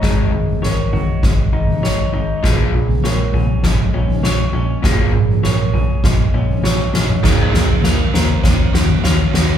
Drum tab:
CC |----------------|----------------|----------------|x---------------|
SD |o---o---o---o---|o---o---o---o---|o---o---o---o-o-|o-o-o-o-o-o-o-o-|
T2 |----------------|----------------|-o-------------o|----------------|
FT |o--o--o-o--o----|o--o--o-o--o----|o--o--o-o--o----|o--o--o-o--o----|
BD |o-------o-------|o-------o-------|o-------o-------|o-------o-------|